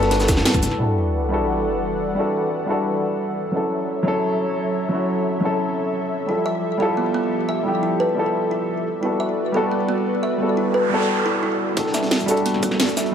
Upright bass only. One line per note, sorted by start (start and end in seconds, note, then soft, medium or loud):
0.00 0.39 G1 loud
0.37 0.45 G2 loud
0.54 0.64 G1 loud
0.63 0.78 D2 medium
11.77 12.19 E1 medium
12.20 12.63 E1 medium
12.63 12.78 B1 medium
12.80 12.97 G1 medium
12.97 13.15 E1 medium